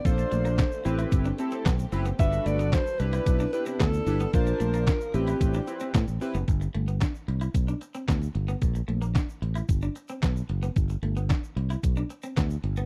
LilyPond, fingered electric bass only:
\new Staff \with { instrumentName = "Fingered electric bass" } { \clef bass \time 4/4 \key a \dorian \tempo 4 = 112 bes,,8 bes,,8. r16 a,,8 g,,8 r8 b,,8 fis,,8 | g,,8 g,,8. r16 c,8 b,,8 r8 d,8 g,,8 | bes,,8 bes,,8. r16 a,,8 a,,8 r8 a,16 a,,16 r16 fis,,16 | g,,8 g,,8. r16 c,8 b,,8 r8 d,8 g,,8 |
bes,,8 bes,,8. r16 a,,8 g,,8 r8 b,,8 fis,,8 | g,,8 g,,8. r16 c,8 b,,8 r8 d,8 g,,8 | }